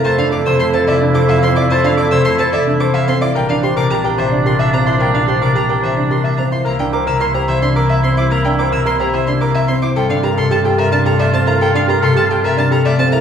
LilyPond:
<<
  \new Staff \with { instrumentName = "Violin" } { \time 3/4 \key f \major \tempo 4 = 109 a''16 f''16 d'''16 e'''16 c'''16 a''16 e''16 r16 d'''16 e''16 c'''16 d'''16 | a''16 f''16 d'''16 e'''16 c'''16 a''16 e''16 r16 d'''16 e''16 c'''16 d'''16 | g''16 f''16 c'''16 d'''16 bes''16 g''16 e''16 r16 c'''16 e''16 bes''16 c'''16 | g''16 f''16 c'''16 d'''16 bes''16 g''16 e''16 r16 c'''16 e''16 bes''16 c'''16 |
bes''16 g''16 d'''16 e'''16 c'''16 bes''16 e''16 c'''16 d'''16 e''16 c'''16 d'''16 | bes''16 g''16 d'''16 e'''16 c'''16 bes''16 e''16 c'''16 d'''16 e''16 c'''16 d'''16 | g''16 f''16 bes''16 c'''16 a''16 g''16 e''16 a''16 bes''16 e''16 a''16 bes''16 | g''16 f''16 bes''16 c'''16 a''16 g''16 e''16 a''16 bes''16 e''16 a''16 bes''16 | }
  \new Staff \with { instrumentName = "Grand piano" } { \time 3/4 \key f \major c''16 r16 d''16 c''16 r16 a'16 d''16 r16 c''16 f''16 r16 d''16 | c''16 r16 d''16 c''16 r16 a'16 d''16 r16 c''16 f''16 r16 d''16 | bes'16 r16 c''16 bes'16 r16 g'16 c''16 r16 bes'16 e''16 r16 c''16 | bes'16 r16 c''16 bes'16 r16 g'16 c''16 r16 bes'16 e''16 r16 c''16 |
bes'16 r16 c''16 bes'16 r16 g'16 c''16 r16 bes'16 e''16 r16 c''16 | bes'16 r16 c''16 bes'16 r16 g'16 c''16 r16 bes'16 e''16 r16 c''16 | a'16 r16 bes'16 a'16 r16 g'16 bes'16 r16 a'16 d''16 r16 bes'16 | a'16 r16 bes'16 a'16 r16 g'16 bes'16 r16 a'16 d''16 r16 bes'16 | }
  \new Staff \with { instrumentName = "Grand piano" } { \time 3/4 \key f \major r16 d'16 a'16 r16 a'16 c''16 r16 d'16 a'16 r16 c'16 e'16 | r16 d'16 a'16 r16 a'16 c''16 r16 d'16 a'16 r16 c'16 e'16 | r16 d'16 g'16 r16 g'16 bes'16 r16 d'16 g'16 r16 c'16 e'16 | r16 d'16 g'16 r16 g'16 bes'16 r16 d'16 g'16 r16 c'16 e'16 |
r16 d'16 bes'16 r16 bes'16 c''16 r16 d'16 bes'16 r16 c'16 e'16 | r16 d'16 bes'16 r16 bes'16 c''16 r16 d'16 bes'16 r16 c'16 e'16 | r16 d'16 g'16 r16 g'16 a'16 r16 d'16 g'16 r16 c'16 e'16 | r16 d'16 g'16 r16 g'16 a'16 r16 d'16 g'16 r16 c'16 e'16 | }
  \new Staff \with { instrumentName = "Oboe" } { \time 3/4 \key f \major e'2.~ | e'2~ e'8. r16 | d'2.~ | d'2~ d'8. r16 |
e'2.~ | e'2~ e'8. r16 | f'2.~ | f'2~ f'8. r16 | }
  \new Staff \with { instrumentName = "Harp" } { \clef bass \time 3/4 \key f \major <f a c'>16 e8 c16 a8 e16 a8 c'16 f8 | a16 e8 c16 a8 e16 a8 c'16 f8 | g16 e8 c16 g8 e16 g8 bes16 f8 | g16 e8 c16 g8 e16 g8 bes16 f8 |
bes16 e8 c16 bes8 e16 bes8 c'16 g8 | bes16 e8 c16 bes8 e16 bes8 c'16 g8 | g16 d8 c16 g8. g8 a16 f8 | g8. c16 g8. g8 a16 f8 | }
  \new Staff \with { instrumentName = "Double bass" } { \clef bass \time 3/4 \key f \major f,2.~ | f,2. | bes,,2.~ | bes,,2. |
c,2.~ | c,2. | g,2.~ | g,2. | }
>>